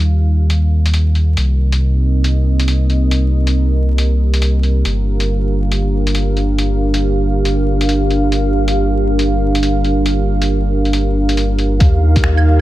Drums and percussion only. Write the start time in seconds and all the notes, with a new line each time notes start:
0.50 closed hi-hat
0.86 closed hi-hat
0.94 closed hi-hat
1.15 closed hi-hat
1.37 closed hi-hat
1.72 closed hi-hat
2.24 closed hi-hat
2.60 closed hi-hat
2.68 closed hi-hat
2.90 closed hi-hat
3.11 closed hi-hat
3.47 closed hi-hat
3.98 closed hi-hat
4.34 closed hi-hat
4.42 closed hi-hat
4.63 closed hi-hat
4.85 closed hi-hat
5.20 closed hi-hat
5.71 closed hi-hat
6.07 closed hi-hat
6.15 closed hi-hat
6.37 closed hi-hat
6.58 closed hi-hat
6.94 closed hi-hat
7.45 closed hi-hat
7.81 closed hi-hat
7.89 closed hi-hat
8.11 closed hi-hat
8.32 closed hi-hat
8.68 closed hi-hat
9.19 closed hi-hat
9.55 closed hi-hat
9.63 closed hi-hat
9.84 closed hi-hat
10.06 closed hi-hat
10.42 closed hi-hat
10.85 closed hi-hat
10.93 closed hi-hat
11.29 closed hi-hat
11.37 closed hi-hat
11.59 closed hi-hat
11.80 kick, closed hi-hat
12.16 kick, closed hi-hat
12.24 finger snap
12.37 claves